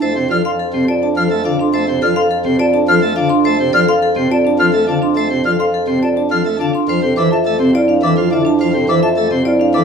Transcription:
0.02 F2 A3 C5
0.16 C3 C5
0.30 F3 A4 D5 F6
0.45 A4 F5 C6
0.59 A4
0.74 C3 C4
0.88 F4 D5 A5
1.02 D4 A5
1.17 F3 A4 F6
1.31 A3 A4
1.45 D3 F4 F5
1.59 D4 C6
1.74 A3 C5
1.88 C3 C5
2.02 F3 A4 D5 F6
2.16 A4 F5 C6
2.31 A4
2.45 C3 C4
2.59 F4 D5 A5
2.73 D4 A5
2.88 F3 A4 F6
3.02 A3 A4
3.16 D3 F4 F5
3.29 D4 C6
3.45 A3 C5
3.59 C3 C5
3.73 F3 A4 D5 F6
3.87 A4 F5 C6
4.02 A4
4.16 C3 C4
4.30 F4 D5 A5
4.45 D4 A5
4.59 F3 A4 F6
4.73 A3 A4
4.88 D3 F4 F5 A5
5.02 D4 C6
5.16 A3 C5
5.31 C3 C5
5.45 F3 A4 D5 F6
5.59 A4 F5 C6
5.74 A4
5.88 C3 C4
6.02 F4 D5 A5
6.16 D4 A5
6.31 F3 A4 F6
6.45 A3 A4
6.59 D3 F4 F5 A5
6.74 D4 C6
6.88 F2 F3 C5
7.02 C3 A4
7.16 E3 A4 C5 D6
7.31 F4 E5 A5
7.46 A3 A4
7.59 C3 C4
7.73 E4 D5 F5
7.88 D4 F5
8.03 E3 A4 D6
8.17 F3 F4
8.31 D3 E4 E5 F5
8.45 D4 A5
8.60 F3 C5
8.73 C3 A4
8.88 E3 A4 C5 D6
9.02 F4 E5 A5
9.17 A3 A4
9.31 C3 C4
9.45 E4 D5 F5
9.60 D4 F5
9.74 E3 A4 D6

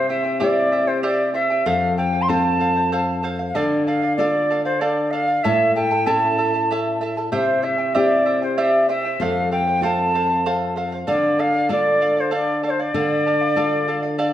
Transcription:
Already playing: C3
0.09 E4 C5 E5 G5
0.23 E4 C5 G5
0.40 C4 E4 G4 C5 D5 E5 G5
0.72 E4 C5 E5 G5
0.87 E4 C5 G5
1.03 E4 G4 C5 D5 E5 G5
1.34 E4 C5 E5 G5
1.50 E4 C5 G5
1.66 F2 A4 C5 F5
1.97 A4 C5 F5 G5
2.13 C5 F5
2.22 C6
2.28 C4 F4 A4 C5 F5 A5
2.59 A4 C5 F5
2.75 C5 F5
2.92 A4 C5 F5
3.23 A4 C5 F5
3.39 C5 F5
3.47 F5
3.55 D3 A4 D5 F5
3.86 A4 D5 F5
4.02 D5 F5
4.16 D4 F4 A4 D5 F5
4.50 A4 D5 F5
4.64 C5 D5 F5
4.80 A4 D5 F5
5.11 A4 D5 F5
5.28 D5 F5
5.43 A2 E4 A4 C#5 E5 A5
5.75 E4 A4 E5 G5 A5
5.91 E4 A4 A5
6.06 C#4 E4 A4 C#5 E5 A5
6.38 E4 A4 E5 A5
6.54 E4 A4 A5
6.71 E4 A4 C#5 E5 A5
7.01 E4 A4 E5 A5
7.17 E4 A4 A5
7.32 C3 E4 G4 C5 E5 G5
7.62 E4 C5 E5 G5
7.78 E4 C5 G5
7.94 C4 E4 G4 C5 D5 E5 G5
8.26 E4 C5 E5 G5
8.42 E4 C5 G5
8.57 E4 G4 C5 D5 E5 G5
8.88 E4 C5 E5 G5
9.05 E4 C5 G5
9.20 F2 A4 C5 F5
9.51 A4 C5 F5 G5
9.67 C5 F5
9.81 C4 F4 A4 C5 F5 A5
10.14 A4 C5 F5
10.30 C5 F5
10.46 A4 C5 F5
10.76 A4 C5 F5
10.92 C5 F5
11.07 D3 A4 D5 F5
11.39 A4 D5 F5
11.54 D5 F5
11.69 D4 F4 A4 D5 F5
12.01 A4 D5 F5
12.17 C5 D5 F5
12.31 A4 D5 F5
12.63 A4 D5 F5
12.70 C5
12.79 D5 F5
12.94 D3 A4 D5 F5
13.26 A4 D5 F5
13.41 D5 F5
13.56 D4 F4 A4 D5 F5
13.88 A4 D5 F5
14.03 D5 F5
14.18 A4 D5 F5

